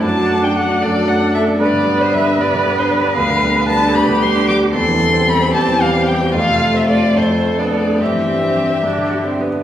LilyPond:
<<
  \new Staff \with { instrumentName = "Violin" } { \time 6/8 \key g \major \tempo 4. = 76 a''8. g''16 fis''8 d''8 fis''8 e''8 | d''8. c''16 e''8 d''8. c''16 d''8 | \key c \major f''4 a''8 b''8 c'''8 d'''8 | c'''4 b''8 a''8 f''8 g''8 |
f''8. e''16 d''8 c''8. d''16 d''8 | e''2~ e''8 r8 | }
  \new Staff \with { instrumentName = "Cello" } { \time 6/8 \key g \major fis'4. a'4. | b'2.~ | \key c \major b'4. g'4. | a'4. g'4. |
f'4. a'4. | g'2~ g'16 r8. | }
  \new Staff \with { instrumentName = "Viola" } { \time 6/8 \key g \major d'2. | b4. b4. | \key c \major b2. | c'2. |
a4. a8. b8. | c'4. d'8. c'16 b8 | }
  \new Staff \with { instrumentName = "Grand piano" } { \clef bass \time 6/8 \key g \major fis,16 fis16 a16 d'16 a16 d'16 fis,16 fis16 a16 d'16 a16 d'16 | g,16 d16 g16 d'16 g16 d'16 g,16 d16 g16 d'16 g16 d'16 | \key c \major d,16 d16 g16 d'16 g16 d'16 d,16 d16 g16 d'16 g16 d'16 | e,16 e16 g16 c'16 g16 c'16 e,16 e16 g16 c'16 g16 c'16 |
f,16 c16 a16 c'16 a16 c'16 f,16 f16 a16 d'16 a16 d'16 | g,16 e16 g16 c'16 g16 c'16 g,16 d16 g16 d'16 g16 d'16 | }
>>